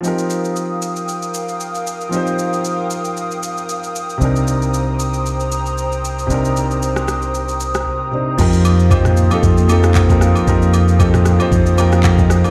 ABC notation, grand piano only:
X:1
M:4/4
L:1/16
Q:"Swing 16ths" 1/4=115
K:Fdor
V:1 name="Grand piano"
[F,CEGB]16 | [F,CEGc]16 | [C,CDEB]16 | [C,CDEB]12- [C,CDEB]2 [C,CDEc]2 |
[F,CEGB]3 z [F,CEGc]2 z [F,CEG=A]2 z [F,CEGA]2 z [F,CEGB]2 z | [F,CEGB]3 z [F,CEG=A]2 z [F,CEGc]2 z [F,CEGB]2 [Af] [Ge] [Ec] [DB] |]